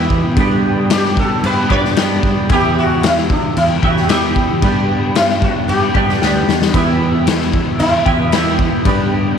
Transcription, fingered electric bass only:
Already playing: E2
0.37 G2
1.43 G2
1.70 G2
2.50 E2
3.57 E2
3.83 E2
4.62 G2
5.69 G2
5.95 G2
6.22 D2
6.48 E2
6.74 E2
7.80 E2
8.06 E2
8.85 G2

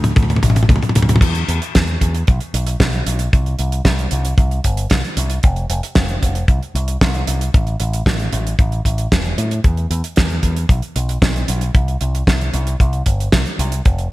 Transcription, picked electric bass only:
Already playing: D2
0.17 D2
0.43 A1
0.69 D2
0.96 D2
1.21 E2
1.48 E2
1.75 E2
2.01 E2
2.28 B1
2.54 B1
2.80 B1
3.06 B1
3.33 C2
3.59 C2
3.85 C2
4.12 C2
4.38 C2
4.64 G1
4.91 C2
5.17 C2
5.44 F1
5.70 F1
5.96 F1
6.23 F1
6.48 C2
6.75 C2
7.01 C2
7.27 C2
7.54 A1
7.80 A1
8.06 A1
8.33 A1
8.59 A1
8.85 A1
9.12 E1
9.38 A2
9.64 E2
9.90 E2
10.18 E2
10.43 E2
10.69 B1
10.96 B1
11.22 B1
11.48 B1
11.75 C2
12.01 C2
12.27 C2
12.54 C2
12.80 C2
13.06 G1
13.33 C2
13.59 C2
13.86 F1

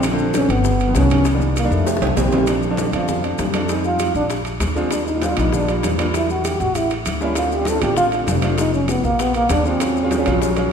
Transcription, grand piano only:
0.03 D3 F3 A3 C4
0.11 D3 F3 A3 C4
0.87 D#3 F3 A#3 B3
0.95 D#3 F3 A#3 B3
1.33 D#3 G3 A#3 D4
1.63 D#3 G3 A#3 D4
2.16 D#3 G3 A3 C4
2.31 D#3 G3 A3 C4
2.47 F3 A3 C4 D4
2.69 F3 A3 C4 D4
2.85 F3 A3 C4 D4
2.92 F3 A3 C4 D4
3.07 F3 A3 C4 D4
3.22 F3 A3 C4 D4
3.52 F3 A3 C4 D4
3.68 G3 G#3 C4 D#4
4.75 G#3 C4 D4 F4
4.90 G3 A#3 D4 F4
5.14 G3 A#3 D4 F4
5.29 G3 A#3 D4 F4
5.37 G3 A#3 D4 F4
5.52 G3 A#3 D4 F4
5.68 G3 A#3 D4 F4
5.98 G3 A#3 D4 F4
6.14 G3 A3 D4 F#4
7.21 G3 A#3 C#4 E4
7.36 A3 C4 D4 F4
7.59 A3 C4 D4 F4
7.74 A3 C4 D4 F4
7.82 A3 C4 D4 F4
7.96 A3 C4 D4 F4
8.11 A3 C4 D4 F4
8.42 A3 C4 D4 F4
8.58 G#3 B3 D#4 F4
9.65 G#3 B3 D4 F4
9.80 F#3 G#3 C#4 F4
10.03 F#3 G#3 C#4 F4
10.18 F#3 G#3 C#4 F4
10.26 F#3 G#3 C#4 F4
10.41 F#3 G#3 C#4 F4
10.56 F#3 G#3 C#4 F4

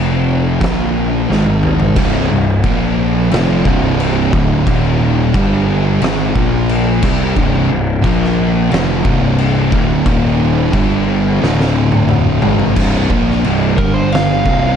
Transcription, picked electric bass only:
Already playing: F1
0.61 A#1
1.30 G#1
1.97 C1
2.31 C1
2.65 A#1
3.32 F1
3.66 C1
4.34 D1
4.67 D#1
5.34 G1
6.02 G#1
6.36 A#1
7.04 C2
7.36 C1
7.70 C1
8.04 A#1
8.72 F1
9.05 C1
9.72 D1
10.06 D#1
10.73 G1
11.42 D1
12.43 G#1
12.77 C1
13.10 A#1
13.45 C1
13.79 G1
14.46 C1

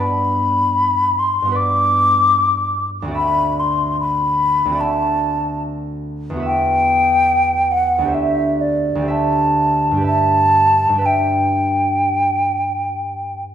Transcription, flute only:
0.01 B5
1.19 C6
1.56 D6
3.16 B5
3.60 C6
4.00 B5
4.81 A5
6.46 G5
7.71 F#5
8.15 E5
8.61 D5
9.10 A5
10.06 A5
11.06 G5

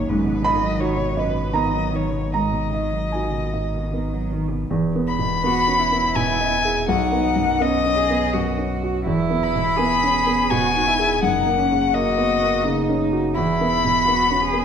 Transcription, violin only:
Already playing: C#5
0.09 B4
0.45 D#5
0.81 C#5
1.19 B4
1.55 D#5
1.95 C#5
2.35 D#5
5.07 B5
6.16 G#5
6.89 F#5
7.62 D#5
9.43 B5
10.50 G#5
11.23 F#5
11.94 D#5
13.35 B5

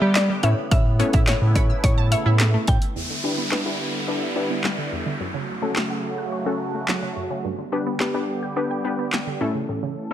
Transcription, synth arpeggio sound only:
0.02 G4
0.30 G3
0.72 C#3
1.00 B3
1.14 E4
1.28 C#5
1.56 B5
1.70 E6
1.98 A5
2.12 C#5
2.26 E4
2.54 A3
2.96 E2
3.10 D3
3.38 B3
3.52 E4
3.66 E5
4.08 D6
4.22 E5
4.50 B3
4.64 G3
4.78 D3
4.92 E2
5.06 D3
5.20 F#2
5.34 C#3
5.62 A3
5.76 F#4
5.90 F#5
6.18 F#6
6.32 C#6
6.46 F#5
6.74 A3
6.88 F#3
7.02 C#3
7.16 F#2
7.30 C#3
7.44 G2
7.58 D3
7.87 B3
8.01 G4
8.15 G5
8.43 G6
8.57 D6
8.71 G5
8.99 B3
9.13 G3
9.27 D3
9.41 A2
9.55 C#3
9.69 A2
9.83 C#3

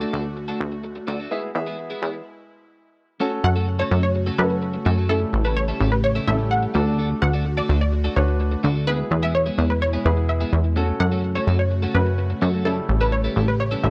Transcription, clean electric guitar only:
0.01 A3 D4 F#4 A4
0.13 A3 D4 F#4 A4
0.25 muted clean electric guitar stroke
0.37 muted clean electric guitar stroke
0.48 A3 D4 F#4 A4
0.72 muted clean electric guitar stroke
0.84 muted clean electric guitar stroke
0.96 muted clean electric guitar stroke
1.07 A3 D4 F#4 A4
1.19 A3 D4 F#4 A4
1.31 G#3 B3 E4 G#4
1.43 muted clean electric guitar stroke
1.55 muted clean electric guitar stroke
1.66 G#3 B3 E4 G#4
1.78 muted clean electric guitar stroke
1.90 G#3 B3 E4 G#4
2.02 G#3 B3 E4 G#4
2.14 muted clean electric guitar stroke
3.20 A3 C#4 F#4 A4
3.32 muted clean electric guitar stroke
3.44 muted clean electric guitar stroke
3.56 A3 C#4 F#4 A4
3.68 muted clean electric guitar stroke
3.79 A3 C#4 F#4 A4
3.91 A3 C#4 F#4 A4
4.03 muted clean electric guitar stroke
4.15 muted clean electric guitar stroke
4.26 A3 C#4 F#4 A4
4.38 muted clean electric guitar stroke
4.50 muted clean electric guitar stroke
4.62 muted clean electric guitar stroke
4.74 muted clean electric guitar stroke
4.85 A3 C#4 F#4 A4
4.97 A3 C#4 F#4 A4
5.09 G3 C#4 E4 A4
5.21 muted clean electric guitar stroke
5.33 muted clean electric guitar stroke
5.45 G3 C#4 E4 A4
5.56 muted clean electric guitar stroke
5.68 G3 C#4 E4 A4
5.80 G3 C#4 E4 A4
5.92 muted clean electric guitar stroke
6.04 muted clean electric guitar stroke
6.15 G3 C#4 E4 A4
6.27 muted clean electric guitar stroke
6.39 muted clean electric guitar stroke
6.51 muted clean electric guitar stroke
6.63 muted clean electric guitar stroke
6.74 A3 D4 F#4 A4
6.86 A3 D4 F#4 A4
6.98 A3 D4 F#4 A4
7.10 muted clean electric guitar stroke
7.22 muted clean electric guitar stroke
7.33 A3 D4 F#4 A4
7.46 muted clean electric guitar stroke
7.57 A3 D4 F#4 A4
7.69 A3 D4 F#4 A4
7.81 muted clean electric guitar stroke
7.93 muted clean electric guitar stroke
8.04 A3 D4 F#4 A4
8.16 muted clean electric guitar stroke
8.28 muted clean electric guitar stroke
8.40 muted clean electric guitar stroke
8.52 muted clean electric guitar stroke
8.63 A3 D4 F#4 A4
8.75 A3 D4 F#4 A4
8.87 G#3 B3 E4 G#4
8.99 muted clean electric guitar stroke
9.11 muted clean electric guitar stroke
9.22 G#3 B3 E4 G#4
9.34 muted clean electric guitar stroke
9.46 G#3 B3 E4 G#4
9.58 G#3 B3 E4 G#4
9.70 muted clean electric guitar stroke
9.81 muted clean electric guitar stroke
9.93 G#3 B3 E4 G#4
10.17 muted clean electric guitar stroke
10.29 muted clean electric guitar stroke
10.41 G#3 B3 E4 G#4
10.53 muted clean electric guitar stroke
10.64 muted clean electric guitar stroke
10.76 A3 C#4 F#4 A4
10.88 muted clean electric guitar stroke
11.00 muted clean electric guitar stroke
11.12 A3 C#4 F#4 A4
11.24 muted clean electric guitar stroke
11.35 A3 C#4 F#4 A4
11.47 A3 C#4 F#4 A4
11.59 muted clean electric guitar stroke
11.71 muted clean electric guitar stroke
11.82 A3 C#4 F#4 A4
11.94 muted clean electric guitar stroke
12.06 muted clean electric guitar stroke
12.18 muted clean electric guitar stroke
12.30 muted clean electric guitar stroke
12.41 A3 C#4 F#4 A4
12.53 A3 C#4 F#4 A4
12.65 G3 C#4 E4 A4
12.77 muted clean electric guitar stroke
12.89 muted clean electric guitar stroke
13.01 G3 C#4 E4 A4
13.12 muted clean electric guitar stroke
13.24 G3 C#4 E4 A4
13.36 G3 C#4 E4 A4
13.48 muted clean electric guitar stroke
13.60 muted clean electric guitar stroke
13.71 G3 C#4 E4 A4
13.83 muted clean electric guitar stroke

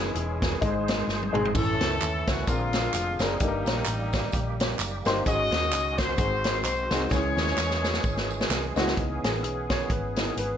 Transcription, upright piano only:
Already playing: G#2 G#3 C#4 E4 G#4
0.61 G#2 G#3 A3 G#4 D#5
0.67 C5
1.33 G#3 C4 D#4 G#4
1.53 A2 A3 C#4 E4 A4
2.47 A#2 C4 D4 G#4 A#4
3.20 C4 D4 G#4 A#4
3.40 G2 A#3 D#4 G4 A4
3.48 A#4
5.06 A#3 D#4 G4 C5
5.25 G#2 C#4 D#4 F#4 G#4
6.17 G#2 C4 D#4 F#4 G#4
6.91 C4 D#4 F#4 G#4
7.11 C#3 G#3 C#4 E4 G#4
8.76 G#3 C#4 E4 F#4
8.96 E3 B3 D#4
9.24 G#4
9.72 C#5
9.91 B4
10.16 E3 B3 D#4
10.39 B4

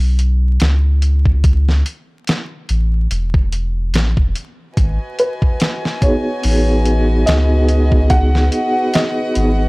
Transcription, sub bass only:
Already playing: B1
0.61 C#2
2.70 A1
3.11 E1
3.94 A1
4.17 E1
4.77 G#1
6.44 A1
7.28 C#2
9.36 G#1

